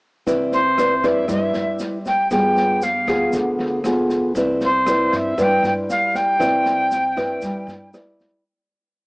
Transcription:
0.26 C2 C4 E4 B4 D5, kick, snare, shaker
0.52 C5, snare, shaker
0.78 E4 B4 D5, cross-stick, snare, shaker
1.03 G2 E4 B4 D5 E5, kick, snare, shaker
1.28 G2 G3 E4 B4 D5 E5, kick, cross-stick, snare, shaker
1.54 G2, snare, shaker
1.79 snare, shaker
2.05 G5, kick, snare, shaker
2.31 G1 G3 B3 F4 G#4 G5, kick, cross-stick, snare, shaker
2.57 snare, shaker
2.82 F5, snare, shaker
3.07 D2 B3 F4 G#4, kick, cross-stick, snare, shaker
3.33 D2 D3, kick, snare, shaker
3.59 D2, snare, shaker
3.84 B3 F4 G#4, cross-stick, snare, shaker
4.09 kick, snare, shaker
4.35 C2 C4 E4 B4 D5, kick, snare, shaker
4.61 C5, snare, shaker
4.87 E4 B4 D5, cross-stick, snare, shaker
5.12 G2 E5, kick, snare, shaker
5.38 G2 G3 E4 B4 D5, kick, cross-stick, snare, shaker
5.42 G5
5.62 G2 G5, snare, shaker
5.90 F5, snare, shaker
6.15 G5, kick, snare, shaker
6.39 C2 C4 E4 B4 D5, kick, cross-stick, snare, shaker
6.66 snare, shaker
6.91 snare, shaker
7.17 G2 E4 B4 D5, kick, cross-stick, snare, shaker
7.42 G2 G3, kick, snare, shaker
7.67 G2, snare, shaker
7.93 E4 B4 D5, cross-stick, snare, shaker
8.20 kick, snare, shaker

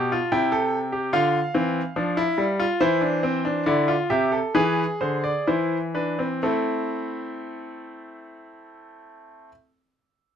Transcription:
Already playing: B2 G4 A5
0.12 F4
0.32 C3 E4 G5
0.52 A4
0.92 G4
1.13 D3 F4 F5
1.54 E3 C4
1.96 F3 D4
2.17 E4
2.38 G3
2.60 F4
2.81 E3 E4 C5
3.01 D4
3.23 C4
3.45 D4
3.66 D3 E4 D5
3.88 F4
4.10 C3 G4 E5
4.32 A4
4.55 E3 G#4 B4
5.01 D3 C5
5.24 D5
5.47 E3 E4 C5
5.94 D4 B4
6.19 C4
6.43 A3 C4 E4 A4

